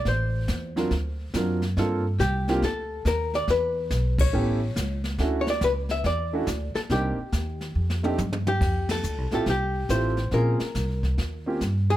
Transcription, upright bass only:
X:1
M:4/4
L:1/8
Q:"Swing" 1/4=140
K:Dphr
V:1 name="Upright bass" clef=bass
A,,,2 =E,,2 D,,2 ^F,,2 | G,,2 C,,2 D,,2 E,,2 | =E,,2 =B,,,2 A,,,2 ^C,,2 | D,,2 ^C,,2 =E,,2 D,, z |
C,, z E,,2 F,,2 G,,2 | [K:F] F,,2 (3D,, C,, A,,, C,,2 A,,,2 | B,,, z C,,2 _E,,2 G,,2 |]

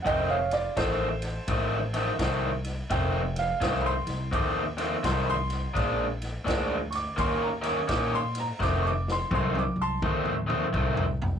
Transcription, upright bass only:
X:1
M:4/4
L:1/8
Q:"Swing" 1/4=84
K:Fmix
V:1 name="Upright bass" clef=bass
F,,,2 A,,,2 A,,,2 C,,2 | F,,,2 C,, C,, E,,2 C,,2 | B,,,2 D,,2 E,,2 B,,2 | F,,,2 C,, C,, E,,2 C,,2 |]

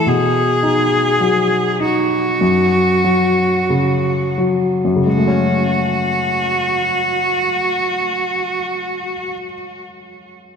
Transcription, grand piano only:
X:1
M:4/4
L:1/8
Q:1/4=44
K:F#dor
V:1 name="Grand piano" clef=bass
B,, D F, D F,, F, C, F, | [F,,C,G,A,C]8 |]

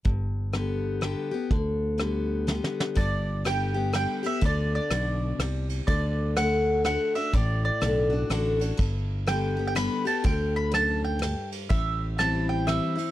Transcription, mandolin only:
X:1
M:3/4
L:1/16
Q:"Swing" 1/4=124
K:G
V:1 name="Mandolin"
z12 | z12 | d4 g4 g2 e2 | d2 d8 z2 |
d4 f4 f2 e2 | d2 d8 z2 | z4 g3 g b2 a2 | g2 b2 a2 g4 z2 |
e4 a2 g2 e4 |]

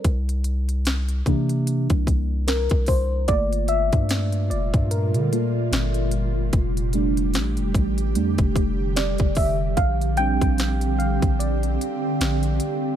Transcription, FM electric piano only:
X:1
M:4/4
L:1/8
Q:"Swing 16ths" 1/4=74
K:Gdor
V:1 name="FM electric piano"
z6 B c | d e2 d B2 z2 | z6 d e | f g2 f d2 z2 |]
V:2 name="FM electric piano"
z3 [E,B,D] z4 | [A,B,F] z4 [B,FA] z2 | z [G,A,D] z2 [G,A,D] z3 | z [G,CD] z6 |]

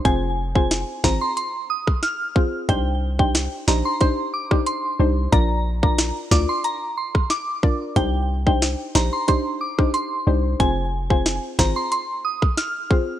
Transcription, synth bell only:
X:1
M:4/4
L:1/16
Q:1/4=91
K:Cm
V:1 name="Synth bell"
a z2 a z2 b c' c' z e' z f'3 z | g z2 g z2 b c' c' z d' z c'3 z | b z2 b z2 d' c' b z c' z d'3 z | g z2 g z2 b c' c' z d' z c'3 z |
a z2 a z2 b c' c' z e' z f'3 z |]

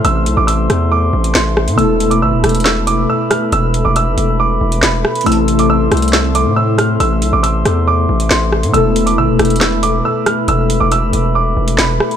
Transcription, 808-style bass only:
X:1
M:4/4
L:1/16
Q:1/4=138
K:Am
V:1 name="808-style bass" clef=bass
A,,,2 B,,, A,,,3 E,,4 A,,,2 A,,,3 A,, | E,,,4 ^G,,, E,,, E,,,6 z4 | E,,,3 E,,,2 F,,, E,,,4 E,,,2 E,,,2 z2 | A,,,6 C,,4- C,, A,,4- A,, |
A,,,2 B,,, A,,,3 E,,4 A,,,2 A,,,3 A,, | E,,,4 ^G,,, E,,, E,,,6 z4 | E,,,3 E,,,2 F,,, E,,,4 E,,,2 E,,,2 z2 |]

